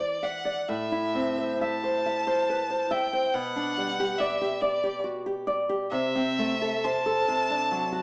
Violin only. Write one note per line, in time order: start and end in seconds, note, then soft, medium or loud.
0.00 0.25 D5 medium
0.23 0.70 F#5 medium
0.68 1.60 E5 medium
1.61 2.93 A5 medium
2.91 3.35 G5 medium
3.34 4.19 F#5 loud
4.18 4.62 E5 medium
4.61 5.03 D5 medium
5.90 6.85 E5 loud
6.84 8.02 A5 loud